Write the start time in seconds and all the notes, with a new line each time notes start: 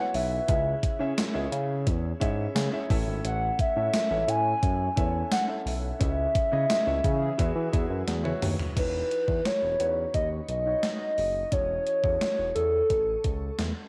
Already playing: B3 E4 F#4 B4 C#5 D#5 E5 F#5
0.14 B1 E5, open hi-hat
0.48 C#2 C#3 C#4 E4 G#4 C#5 E5, kick, closed hi-hat
0.83 kick, closed hi-hat
0.99 C#3 C#4 E4 G#4 C#5 E5
1.18 snare, closed hi-hat, tambourine
1.34 C#2 C#4 E4 G#4 C#5 E5
1.52 C#3, closed hi-hat
1.87 E2, kick, closed hi-hat
2.20 G#2 C#4 E4 G#4 C#5 E5 G#5, kick, closed hi-hat
2.55 C#3 E5, snare, closed hi-hat, tambourine
2.72 C#4 E4 G#4 C#5 E5
2.90 A1 A2 C#4 E4 A4 C#5 E5, kick, open hi-hat
3.07 G#1
3.25 A1 F#5, closed hi-hat
3.59 E5, kick, closed hi-hat
3.76 A2 C#4 E4 A4 C#5 E5
3.93 snare, closed hi-hat, tambourine
4.10 A1 C#4 E4 A4 C#5 E5
4.28 A2 G#5, closed hi-hat
4.63 F#2, kick, closed hi-hat
4.96 E2 C#4 E4 A4 C#5 E5, kick, closed hi-hat
5.32 F#5, snare, closed hi-hat, tambourine
5.47 C#4 E4 A4 C#5 E5
5.66 B1 E5, open hi-hat
5.99 C#2 C#3 C#4 E4 G#4 C#5 E5, kick, closed hi-hat
6.35 kick, closed hi-hat
6.52 C#3 C#4 E4 G#4 C#5 D#5
6.70 snare, closed hi-hat, tambourine
6.86 C#2 C#4 E4 G#4 C#5 E5
7.04 C#3 E3 C#4 G#4, kick, closed hi-hat
7.37 E2 E3 E4 F#4 G#4 B4 E5, kick, closed hi-hat
7.56 E3
7.72 E2 E4 F#4 G#4 B4 E5, kick, closed hi-hat
7.90 F#2
8.08 E2, snare, closed hi-hat
8.24 E4 F#4 G#4 B4 C#5, high tom
8.42 D#2, mid tom, open hi-hat
8.59 floor tom
8.75 E1 E3 D#4 F#4 B4 C#5, kick, closed hi-hat, crash
9.11 closed hi-hat
9.28 E2, kick
9.46 C#5, snare, closed hi-hat
9.62 E1
9.79 E2 C#4 F#4 B4 C#5, closed hi-hat
9.86 D#4
10.14 D#2 D#5, kick, closed hi-hat
10.48 B1 D#5, closed hi-hat
10.66 D#4 F#4 B4 C#5
10.83 snare, closed hi-hat
11.18 F#1, open hi-hat
11.51 E1 E3 C#4 F#4 A4 C#5, kick, closed hi-hat
11.87 closed hi-hat
12.03 E2 C#4 F#4 A4 C#5, kick
12.21 C#5, snare, closed hi-hat
12.39 E1
12.55 E2 A4, closed hi-hat
12.90 A1, kick, closed hi-hat
13.24 C#2, kick, closed hi-hat
13.59 E2, snare, closed hi-hat